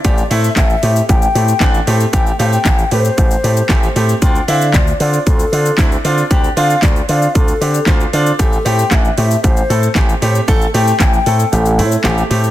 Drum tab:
HH |x-o-x-o-x-o-x-o-|x-o-x-o-x-o-x-o-|x-o-x-o-x-o-x-o-|x-o-x-o-x-o-x-o-|
SH |xxxxxxxxxxxxxxxx|xxxxxxxxxxxxxxxx|xxxxxxxxxxxxxxxx|xxxxxxxxxxxxxxxx|
CP |----x-------x---|----x-------x---|----x-------x---|----x-------x---|
SD |----o-------o---|----o-------o---|----o-------o---|----o-------o---|
BD |o---o---o---o---|o---o---o---o---|o---o---o---o---|o---o---o---o---|

HH |x-o-x-o-x-o-x-o-|x-o-x-o-x-o-x-o-|
SH |xxxxxxxxxxxxxxxx|xxxxxxxxxxxxxxxx|
CP |----x-------x---|----x-------x---|
SD |----o-------o---|----o-------o---|
BD |o---o---o---o---|o---o-----------|